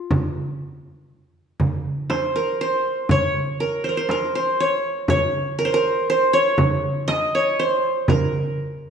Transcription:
Already playing: F4
0.11 frame drum, darbuka dum
1.60 frame drum, darbuka dum
2.10 C5, darbuka tek, frame drum
2.36 A#4
2.61 C5
3.09 C#5, frame drum, darbuka dum
3.60 A#4, darbuka ka
3.84 C5
3.89 A#4
3.97 C5
4.09 A#4, darbuka tek, frame drum
4.35 C5
4.60 C#5
5.08 C#5, frame drum, darbuka dum
5.59 A#4, darbuka ka
5.65 C5
5.74 A#4
6.10 C5
6.33 C#5
6.58 frame drum, darbuka dum
7.08 D#5, darbuka tek, frame drum
7.35 C#5
7.59 C5
8.08 A#4, frame drum, darbuka dum

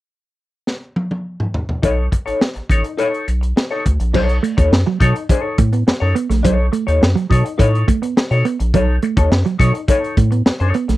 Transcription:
0.67 snare
0.96 high tom
1.11 high tom
1.40 mid tom
1.54 floor tom
1.69 floor tom
1.83 B1 D#4 A4 C#5, kick, closed hi-hat
2.12 muted clean electric guitar stroke, kick, closed hi-hat
2.26 A1 D#4 A4 C#5, closed hi-hat
2.41 muted clean electric guitar stroke, snare
2.55 A1, muted clean electric guitar stroke, closed hi-hat
2.70 A1 D#4 A4 C#5, kick, closed hi-hat
2.84 muted clean electric guitar stroke, closed hi-hat
2.98 D#4 A4 C#5, closed hi-hat
3.14 closed hi-hat
3.27 B1, muted clean electric guitar stroke, closed hi-hat
3.41 muted clean electric guitar stroke, closed hi-hat
3.56 muted clean electric guitar stroke, snare
3.71 D#4 A4 C#5
3.85 D2, muted clean electric guitar stroke, kick, closed hi-hat
4.00 A#1, muted clean electric guitar stroke, closed hi-hat
4.13 B1 F#3 D#4 A4 C#5, kick, crash
4.29 closed hi-hat
4.43 A3, muted clean electric guitar stroke, closed hi-hat
4.57 D#2 D#4 A4 C#5, muted clean electric guitar stroke, kick, closed hi-hat
4.71 F#2, muted clean electric guitar stroke, snare
4.86 F#3, muted clean electric guitar stroke
5.00 B2 F#3 D#4 A4 C#5, kick, closed hi-hat
5.15 muted clean electric guitar stroke, closed hi-hat
5.29 D4 G#4 C5, muted clean electric guitar stroke, kick, closed hi-hat
5.40 D#4 A4 C#5
5.58 A2 A3, muted clean electric guitar stroke, kick, closed hi-hat
5.73 B3, muted clean electric guitar stroke, closed hi-hat
5.87 F#2, muted clean electric guitar stroke, snare
6.00 F#2 D#4 A4 C#5
6.15 B3, muted clean electric guitar stroke, closed hi-hat
6.30 A#1 A3, muted clean electric guitar stroke, snare, closed hi-hat
6.43 B1 F#3 D#4 A4 C#5, kick, closed hi-hat
6.72 A3, muted clean electric guitar stroke, closed hi-hat
6.87 D#2 D#4 A4 C#5, muted clean electric guitar stroke, closed hi-hat
7.02 F#2, muted clean electric guitar stroke, snare
7.15 F#3, muted clean electric guitar stroke, closed hi-hat
7.30 B2 F#3 D#4 A4 C#5, kick, closed hi-hat
7.45 muted clean electric guitar stroke, closed hi-hat
7.58 A2 D#4 A4 C#5, muted clean electric guitar stroke, kick, closed hi-hat
7.75 closed hi-hat
7.87 A3, muted clean electric guitar stroke, kick, closed hi-hat
8.02 B3, muted clean electric guitar stroke, closed hi-hat
8.17 muted clean electric guitar stroke, snare
8.31 B2 D#4 A4 C#5, closed hi-hat
8.45 B3, muted clean electric guitar stroke, closed hi-hat
8.60 A#1, muted clean electric guitar stroke, closed hi-hat
8.74 B1 F#3 D#4 A4 C#5, kick, closed hi-hat
9.02 A3, muted clean electric guitar stroke, closed hi-hat
9.17 D#2 D#4 A4 C#5, muted clean electric guitar stroke, kick, closed hi-hat
9.31 F#2, muted clean electric guitar stroke, snare
9.45 F#3, muted clean electric guitar stroke, closed hi-hat
9.59 B2 F#3 D#4 A4 C#5, kick, closed hi-hat
9.74 muted clean electric guitar stroke, closed hi-hat
9.88 D#4 A4 C#5, muted clean electric guitar stroke, kick, closed hi-hat
10.04 closed hi-hat
10.17 A2 A3, muted clean electric guitar stroke, kick, closed hi-hat
10.31 B3, muted clean electric guitar stroke, closed hi-hat
10.46 F#2, muted clean electric guitar stroke, snare
10.60 F#2 D#4 A4 C#5, closed hi-hat
10.74 B3, muted clean electric guitar stroke, closed hi-hat
10.88 A#1 A3, muted clean electric guitar stroke, snare, closed hi-hat

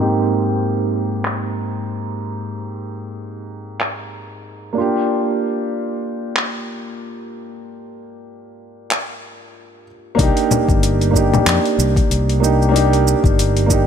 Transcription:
Already playing: G#2 A#3 C4
0.00 D#4 G4
1.25 clap
3.80 clap
4.73 A#3 D4
4.78 F4 G4
6.36 clap
8.91 clap
10.15 C2 A#3 D4, kick
10.19 D#4 G4, open hi-hat, shaker
10.37 open hi-hat, shaker
10.51 low conga, shaker
10.68 G1, kick, shaker
10.83 open hi-hat, shaker
11.01 open hi-hat, shaker
11.11 A#3 D4, kick
11.16 D#4 G4, shaker
11.34 low conga, shaker
11.46 F2, clap, open hi-hat, shaker
11.65 open hi-hat
11.79 C2, shaker
11.96 kick, open hi-hat, shaker
12.10 C2, open hi-hat, shaker
12.29 open hi-hat
12.40 A#3 D4 D#4 G4, shaker
12.62 shaker
12.69 A#3 D4
12.74 D#4 G4, open hi-hat, shaker
12.93 open hi-hat, shaker
13.08 shaker
13.24 G1, kick, shaker
13.39 open hi-hat, shaker
13.57 open hi-hat, shaker
13.66 A#3 D4, kick
13.70 D#4 G4, shaker

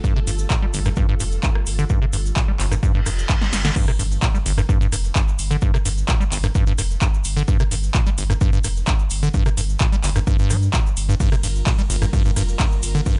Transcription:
Already playing: G3 F4 A4
0.04 G2, kick, cabasa
0.16 C3
0.27 G1 G2, open hi-hat, cabasa
0.38 cabasa
0.50 A#2, kick, clap, cabasa
0.62 G3
0.73 G1, open hi-hat, cabasa
0.85 G2, cross-stick, cabasa
0.96 G2, kick, cabasa
1.09 G2
1.20 F1 G2, open hi-hat, cabasa
1.32 cabasa
1.43 G2, kick, clap, cabasa
1.55 cross-stick
1.66 G1, open hi-hat, cabasa
1.79 D3, cabasa
1.89 G2, kick, cabasa
2.02 C3
2.13 G1 G2, open hi-hat, cabasa
2.26 cabasa
2.36 A#2, kick, clap, cabasa
2.48 G3
2.60 G1, clap, open hi-hat, cabasa
2.72 G2, cross-stick, cabasa
2.83 G2, kick, reverse cymbal, cabasa
2.95 G2
3.06 F1 G2, cross-stick, open hi-hat, cabasa
3.19 cabasa
3.29 G2, kick, clap, cabasa
3.41 snare
3.53 G1, snare, open hi-hat, cabasa
3.65 D3, snare, cabasa
3.76 G2, kick, crash, impact, cabasa
3.88 C3, cross-stick, cabasa
3.99 G1 G2, open hi-hat, cabasa
4.11 cabasa
4.22 A#2, kick, clap, cabasa
4.34 G3, cabasa
4.46 G1, open hi-hat, cabasa
4.58 G2, cross-stick, cabasa
4.69 G2, kick, cabasa
4.81 G2, cabasa
4.92 F1 G2, cross-stick, open hi-hat, cabasa
5.04 cabasa
5.15 G2, kick, clap, cabasa
5.28 cabasa
5.39 G1, open hi-hat, cabasa
5.51 D3, cabasa
5.61 G2, kick, cabasa
5.74 C3, cross-stick, cabasa
5.85 G1 G2, open hi-hat, cabasa
5.97 cabasa
6.08 A#2, kick, clap, cabasa
6.20 G3, cabasa
6.32 G1, clap, open hi-hat, cabasa
6.43 G2, cross-stick, cabasa
6.55 G2, kick, cabasa
6.67 G2, cabasa
6.78 F1 G2, cross-stick, open hi-hat, cabasa
6.91 cabasa
7.01 G2, kick, clap, cabasa
7.14 cabasa
7.24 G1, open hi-hat, cabasa
7.37 D3, cabasa
7.48 G2, kick, cabasa
7.60 C3, cross-stick, cabasa
7.71 G1 G2, open hi-hat, cabasa
7.83 cabasa
7.94 A#2, kick, clap, cabasa
8.06 G3, cabasa
8.18 G1, open hi-hat, cabasa
8.30 G2, cross-stick, cabasa
8.41 G2, kick, cabasa
8.53 G2, cabasa
8.64 F1 G2, cross-stick, open hi-hat, cabasa
8.76 cabasa
8.86 G2, kick, clap, cabasa
8.99 cabasa
9.10 G1, open hi-hat, cabasa
9.23 D3, cabasa
9.34 G2, kick, cabasa
9.46 C3, cross-stick, cabasa
9.57 G1 G2, open hi-hat, cabasa
9.69 cabasa
9.79 A#2, kick, clap, cabasa
9.92 G3, cabasa
10.04 G1, clap, open hi-hat, cabasa
10.16 G2, cross-stick, cabasa
10.27 G2, kick, cabasa
10.39 G2, cabasa
10.50 G2 G3, cross-stick, open hi-hat, cabasa
10.62 cabasa
10.73 A#2, kick, clap, cabasa
10.86 cabasa
10.97 G1, open hi-hat, cabasa
11.09 G2, cabasa
11.20 G2 G3 F4 A#4, kick, ride, cabasa
11.32 C3, cross-stick, cabasa
11.43 G1 G2, open hi-hat, ride, cabasa
11.55 cabasa
11.66 A#2, kick, clap, ride, cabasa
11.78 G3, cabasa
11.90 G1, open hi-hat, ride, cabasa
12.02 G2, cross-stick, cabasa
12.13 G2, kick, ride, cabasa
12.25 G2, cabasa
12.36 F1 G2, cross-stick, open hi-hat, ride, cabasa
12.48 cabasa
12.60 G2, kick, clap, ride, cabasa
12.72 cabasa
12.83 G1, open hi-hat, ride, cabasa
12.95 D3, cabasa
13.06 G2, kick, ride, cabasa

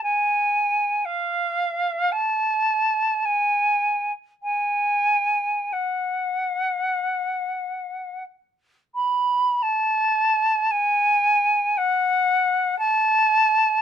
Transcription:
0.03 G#5
1.05 F5
2.12 A5
3.25 G#5
4.43 G#5
5.73 F#5
8.95 B5
9.62 A5
10.71 G#5
11.77 F#5
12.79 A5

